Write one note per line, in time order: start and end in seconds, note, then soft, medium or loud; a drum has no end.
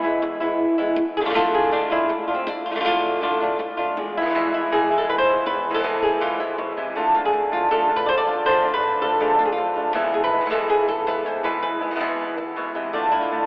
0.03 0.21 E3 soft
0.03 0.21 G#3 medium
0.03 0.21 B3 soft
0.03 0.21 E4 medium
0.22 muted nylon-string guitar stroke medium
0.40 0.78 E3 soft
0.40 0.78 G#3 medium
0.40 0.77 B3 soft
0.40 0.77 E4 medium
0.78 0.97 E3 soft
0.78 0.97 G#3 soft
0.78 0.97 B3 soft
0.78 0.96 E4 medium
0.96 muted nylon-string guitar stroke medium
1.17 1.24 D3 medium
1.17 1.24 A3 medium
1.17 1.21 G#4 medium
1.21 1.28 D3 medium
1.21 1.25 D4 medium
1.21 1.25 F4 medium
1.25 1.29 A3 medium
1.25 1.29 D4 medium
1.25 1.29 F4 medium
1.29 1.33 D3 medium
1.29 1.33 A3 medium
1.29 1.33 D4 medium
1.29 1.35 F4 medium
1.34 1.70 D3 medium
1.34 1.71 A3 medium
1.34 1.71 D4 loud
1.34 1.72 F4 loud
1.34 1.54 A4 loud
1.54 1.73 G#4 medium
1.71 1.90 D3 medium
1.71 1.90 A3 medium
1.71 1.90 D4 medium
1.71 1.89 F4 medium
1.90 2.08 A3 soft
1.90 2.09 D4 medium
1.90 2.11 E4 medium
1.90 2.08 F4 medium
2.09 muted nylon-string guitar stroke medium
2.28 2.47 A3 soft
2.28 2.34 D4 soft
2.28 2.46 F4 medium
2.34 2.48 C4 medium
2.47 2.67 D4 medium
2.47 muted nylon-string guitar stroke medium
2.66 2.71 F4 medium
2.70 2.74 D3 medium
2.70 2.74 A3 medium
2.70 2.75 D4 medium
2.70 2.75 F4 medium
2.75 2.78 D3 medium
2.75 2.79 A3 medium
2.75 2.79 D4 medium
2.75 2.79 F4 medium
2.80 2.83 D3 medium
2.80 2.83 A3 medium
2.80 2.84 D4 medium
2.80 2.84 F4 medium
2.84 3.20 D3 medium
2.84 3.20 A3 medium
2.84 3.21 D4 medium
2.84 3.22 F4 loud
3.21 3.39 D3 medium
3.21 3.40 A3 medium
3.21 3.40 D4 medium
3.21 3.39 F4 medium
3.40 3.58 A3 soft
3.40 3.58 D4 medium
3.40 3.59 F4 medium
3.59 muted nylon-string guitar stroke medium
3.77 3.97 A3 soft
3.77 3.96 D4 soft
3.77 3.96 F4 medium
3.97 5.45 E2 medium
3.97 4.90 G#3 soft
3.97 muted nylon-string guitar stroke medium
4.17 4.24 B2 soft
4.17 4.24 E3 soft
4.17 4.25 G#3 soft
4.17 4.53 E4 medium
4.21 4.29 B2 medium
4.21 4.25 B3 soft
4.21 4.25 E4 medium
4.25 4.29 E3 medium
4.25 4.29 G#3 soft
4.25 4.29 B3 medium
4.25 4.30 E4 medium
4.25 4.54 F4 medium
4.30 4.33 B2 medium
4.30 4.34 E3 medium
4.30 4.34 G#3 medium
4.30 4.34 B3 medium
4.30 4.34 E4 medium
4.34 4.70 E2 medium
4.34 4.71 B2 medium
4.34 4.71 E3 medium
4.34 4.71 G#3 medium
4.34 4.71 B3 medium
4.34 4.72 E4 medium
4.54 4.72 E4 medium
4.71 4.90 E2 medium
4.71 4.90 B2 medium
4.71 4.90 E3 medium
4.71 4.90 G#3 medium
4.71 4.89 B3 medium
4.71 4.89 E4 medium
4.71 4.97 G#4 medium
4.90 5.08 E3 soft
4.90 5.08 G#3 soft
4.90 5.45 G#3 soft
4.90 5.08 B3 soft
4.90 5.08 E4 soft
4.98 5.09 A4 medium
5.09 5.18 B4 medium
5.09 muted nylon-string guitar stroke medium
5.18 5.46 C5 loud
5.27 5.46 E3 soft
5.27 5.46 G#3 soft
5.27 5.46 B3 soft
5.27 5.46 E4 soft
5.46 6.96 E2 medium
5.46 5.74 B4 loud
5.46 muted nylon-string guitar stroke medium
5.70 5.73 B2 soft
5.70 5.73 E3 soft
5.70 5.74 G#3 soft
5.70 5.74 B3 soft
5.70 5.74 E4 soft
5.74 5.77 B2 soft
5.74 5.78 E3 medium
5.74 5.78 G#3 soft
5.74 5.78 B3 medium
5.74 5.79 E4 medium
5.74 6.02 A4 medium
5.79 5.82 B2 medium
5.79 5.82 E3 medium
5.79 5.83 G#3 medium
5.79 5.83 B3 medium
5.79 5.83 E4 medium
5.83 6.19 E2 medium
5.83 6.20 B2 medium
5.83 6.20 E3 medium
5.83 6.20 G#3 medium
5.83 6.21 B3 medium
5.83 6.21 E4 medium
6.02 6.40 G#4 medium
6.20 6.39 E2 medium
6.20 6.39 B2 medium
6.20 6.39 E3 medium
6.20 6.39 G#3 medium
6.20 6.39 B3 medium
6.20 6.38 E4 medium
6.20 6.40 F4 medium
6.39 6.57 E3 soft
6.39 6.58 G#3 soft
6.39 6.58 B3 soft
6.39 6.58 E4 soft
6.39 6.96 E4 medium
6.58 6.77 B2 medium
6.58 muted nylon-string guitar stroke medium
6.77 6.96 C3 medium
6.77 6.95 E3 soft
6.77 6.96 G#3 soft
6.77 6.95 B3 soft
6.77 6.95 E4 soft
6.95 7.13 D3 medium
6.95 8.45 D3 medium
6.95 7.14 A3 medium
6.95 7.14 D4 medium
6.95 7.13 F4 medium
7.14 7.32 A3 soft
7.14 7.33 D4 soft
7.14 7.32 F4 soft
7.14 7.24 F4 medium
7.25 7.52 G#4 medium
7.33 muted nylon-string guitar stroke medium
7.51 7.70 A3 soft
7.51 7.70 D4 soft
7.51 7.70 F4 soft
7.51 7.71 F4 medium
7.70 7.88 D3 medium
7.70 7.89 A3 medium
7.70 7.89 D4 medium
7.70 7.88 F4 medium
7.70 8.27 A4 medium
7.89 8.07 A3 soft
7.89 8.07 D4 soft
7.89 8.07 F4 soft
7.96 8.06 B4 loud
8.06 8.17 C5 loud
8.06 8.09 D5 medium
8.06 muted nylon-string guitar stroke medium
8.17 8.45 D5 loud
8.27 8.44 A3 soft
8.27 8.45 D4 soft
8.27 8.44 F4 soft
8.27 8.43 F4 soft
8.45 8.63 D3 medium
8.45 9.95 D3 medium
8.45 8.63 A3 medium
8.45 8.63 D4 medium
8.45 8.62 F4 medium
8.45 8.73 C5 loud
8.64 8.82 A3 soft
8.64 8.82 D4 soft
8.64 8.82 F4 soft
8.74 9.39 B4 loud
8.82 muted nylon-string guitar stroke medium
9.01 9.19 A3 soft
9.01 9.19 D4 soft
9.01 9.19 F4 soft
9.01 9.20 A4 medium
9.20 9.38 D3 medium
9.20 9.38 A3 medium
9.20 9.38 D4 medium
9.20 9.37 F4 medium
9.20 9.38 G#4 medium
9.38 9.56 A3 soft
9.38 9.57 D4 soft
9.38 9.56 F4 soft
9.38 9.45 F4 medium
9.45 9.52 G#4 medium
9.52 9.94 F4 medium
9.57 muted nylon-string guitar stroke medium
9.75 9.94 A3 soft
9.75 9.94 D4 soft
9.75 9.93 F4 soft
9.94 10.30 E2 medium
9.94 11.42 E2 medium
9.94 10.31 B2 medium
9.94 10.31 E3 medium
9.94 10.31 G#3 medium
9.94 10.31 B3 medium
9.94 11.42 B3 soft
9.94 10.30 E4 medium
9.94 11.42 E4 medium
9.94 11.43 E5 soft
10.14 10.23 G#4 medium
10.24 10.51 B4 medium
10.31 10.40 E3 soft
10.31 10.40 G#3 soft
10.31 10.41 B3 soft
10.31 10.41 E4 soft
10.41 10.44 B2 soft
10.41 10.44 E3 soft
10.41 10.45 G#3 soft
10.41 10.45 B3 soft
10.41 10.45 E4 medium
10.45 10.49 B2 medium
10.45 10.49 E3 medium
10.45 10.49 G#3 medium
10.45 10.50 B3 medium
10.45 10.50 E4 medium
10.50 10.87 E2 medium
10.50 10.87 B2 medium
10.50 10.87 E3 medium
10.50 10.87 G#3 medium
10.50 10.87 B3 medium
10.50 10.87 E4 medium
10.50 10.69 A4 medium
10.70 10.88 G#4 medium
10.88 11.07 A4 medium
10.88 muted nylon-string guitar stroke medium
11.06 11.24 E3 soft
11.06 11.24 G#3 soft
11.06 11.24 B3 soft
11.06 11.23 E4 medium
11.06 11.26 B4 loud
11.24 11.43 E3 soft
11.24 11.43 G#3 soft
11.24 11.43 B3 soft
11.24 11.43 E4 soft
11.24 11.44 C5 medium
11.43 11.80 E2 medium
11.43 12.93 E2 medium
11.43 11.80 B2 medium
11.43 11.81 E3 medium
11.43 11.81 G#3 medium
11.43 11.80 B3 medium
11.43 11.80 E4 medium
11.43 11.61 B4 loud
11.63 12.75 B4 medium
11.81 11.90 E3 soft
11.81 11.90 G#3 soft
11.81 11.91 B3 soft
11.81 11.91 E4 soft
11.91 11.94 B2 soft
11.91 11.94 E3 soft
11.91 11.95 G#3 soft
11.91 11.95 B3 soft
11.91 11.95 E4 soft
11.95 11.99 B2 medium
11.95 11.99 E3 medium
11.95 11.99 G#3 medium
11.95 11.99 B3 medium
11.95 12.00 E4 medium
12.00 12.36 E2 medium
12.00 12.37 B2 medium
12.00 12.36 E3 medium
12.00 12.37 G#3 medium
12.00 12.37 B3 medium
12.00 12.37 E4 medium
12.37 muted nylon-string guitar stroke medium
12.56 12.75 B2 medium
12.56 12.74 E3 medium
12.56 12.74 G#3 soft
12.56 12.74 B3 medium
12.56 12.73 E4 medium
12.74 12.94 C3 medium
12.74 12.92 E3 soft
12.74 12.93 G#3 soft
12.74 12.93 B3 soft
12.74 12.92 E4 soft
12.93 13.11 D3 medium
12.93 13.46 D3 medium
12.93 13.11 A3 medium
12.93 13.12 D4 medium
12.93 13.11 F4 medium
12.93 13.11 D5 medium
13.12 13.30 A3 soft
13.12 13.30 D4 soft
13.12 13.46 E4 medium
13.12 13.30 F4 soft
13.21 13.46 F4 medium
13.31 13.46 D3 medium
13.31 13.46 A3 medium
13.31 13.46 D4 soft
13.31 13.46 F4 medium